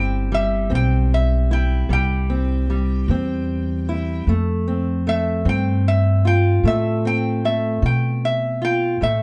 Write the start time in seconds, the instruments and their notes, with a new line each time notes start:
Already playing: upright bass G1, steel-string acoustic guitar C3 G3 C4 E4, resonator guitar played with a steel bar G5
0.32 steel-string acoustic guitar G3, resonator guitar played with a steel bar E5
0.70 upright bass B1, steel-string acoustic guitar E3 C4
0.75 resonator guitar played with a steel bar G5
1.14 resonator guitar played with a steel bar E5
1.51 steel-string acoustic guitar E4, resonator guitar played with a steel bar G5
1.89 upright bass C2, steel-string acoustic guitar C3 G3, resonator guitar played with a steel bar G5
2.30 steel-string acoustic guitar C4
2.70 steel-string acoustic guitar G3
3.08 upright bass E2, steel-string acoustic guitar E3 C4
3.89 steel-string acoustic guitar E4
4.27 upright bass F2, steel-string acoustic guitar F2 A3
4.68 steel-string acoustic guitar C4
5.07 steel-string acoustic guitar A3, resonator guitar played with a steel bar E5
5.45 upright bass G2, steel-string acoustic guitar F3 C4, resonator guitar played with a steel bar G5
5.88 resonator guitar played with a steel bar E5
6.25 steel-string acoustic guitar F4, resonator guitar played with a steel bar G5
6.63 steel-string acoustic guitar F2 A3, upright bass A2, resonator guitar played with a steel bar E5
7.05 steel-string acoustic guitar C4, resonator guitar played with a steel bar G5
7.45 steel-string acoustic guitar A3, resonator guitar played with a steel bar E5
7.82 upright bass B2, steel-string acoustic guitar F3, resonator guitar played with a steel bar G5
8.25 resonator guitar played with a steel bar E5
8.62 steel-string acoustic guitar F4, resonator guitar played with a steel bar G5
9.01 steel-string acoustic guitar F2 A3, upright bass A2, resonator guitar played with a steel bar E5